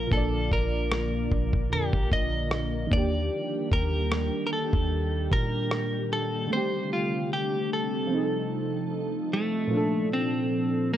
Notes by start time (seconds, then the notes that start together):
Already playing: D3 F3 A#3 F4 A#4
0.07 A#2 A#3
0.12 A#1 D4 A4, kick
0.17 D5
0.52 A#1 A#4, kick
0.92 cross-stick
1.32 A#1, kick
1.53 kick
1.70 F2 A#2 D3 A#3 G4
1.75 A#4
1.93 A#1, kick
2.12 D#5, kick
2.51 cross-stick
2.87 D#3 A#3
2.92 D#2 D#3 G3 D4 G4 D5, kick
2.97 G4
3.72 D#2 A#4, kick
4.12 cross-stick
4.47 A#4
4.53 A4
4.73 D#2, kick
5.32 A#2 A#4, kick
5.71 cross-stick
6.13 A4
6.47 D3 A3
6.52 C3 A3 C4 C5
6.57 G4
6.93 F4
7.33 G4
7.73 A4
8.07 F3 C4
8.12 F3 D#4 A4
8.17 G#4
8.24 A4
9.33 A3
9.67 A#2 F3
9.74 D4 A4
10.13 C4
10.94 A#3